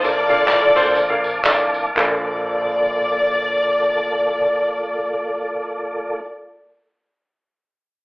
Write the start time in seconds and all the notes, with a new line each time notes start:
Already playing: A5
0.03 A#1 A#2 A#3 D4 F4 A4 D5 F5 D6, tambourine
0.29 A#3 D4 F4 A4 F5, tambourine
0.48 C2, clap, tambourine
0.75 D2 A#3 D4 F4 A4 C5, tambourine
0.95 A#1, tambourine
1.10 A#3 D4 F4 A4 F5
1.24 tambourine
1.45 C2 A#3 D4 F4 A4 D5, clap, tambourine
1.74 tambourine
1.95 A#1 A#3 F4 A4 D5, clap